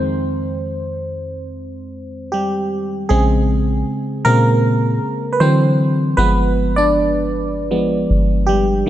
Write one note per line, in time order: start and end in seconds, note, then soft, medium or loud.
0.00 2.67 F2 medium
0.00 2.67 D#3 soft
0.00 2.68 G#3 medium
0.00 2.29 C4 medium
0.00 2.28 C5 loud
2.32 3.06 G3 medium
2.32 3.12 G4 medium
3.09 3.84 A#1 loud
3.09 4.24 C#3 medium
3.09 4.22 G#3 medium
3.09 4.24 C4 medium
3.09 4.21 G#4 medium
4.25 4.99 A#2 loud
4.25 4.60 C#3 medium
4.25 4.60 G#3 soft
4.25 5.30 A#3 medium
4.25 4.60 C4 medium
4.25 5.37 A#4 loud
5.33 5.40 B4 medium
5.40 6.14 D3 loud
5.40 5.93 E3 medium
5.40 5.93 F#3 medium
5.40 6.14 C4 medium
5.40 6.20 C5 loud
6.17 8.06 G1 loud
6.17 7.29 F3 medium
6.17 7.29 G#3 medium
6.17 6.73 B3 medium
6.17 6.78 B4 loud
6.76 7.50 D4 medium
6.76 7.49 D5 medium
7.71 8.06 F3 medium
7.71 8.06 G#3 soft
7.71 8.06 B3 medium
8.10 8.84 G1 loud
8.47 8.86 G3 medium
8.47 8.89 G4 medium
8.86 8.89 D#3 medium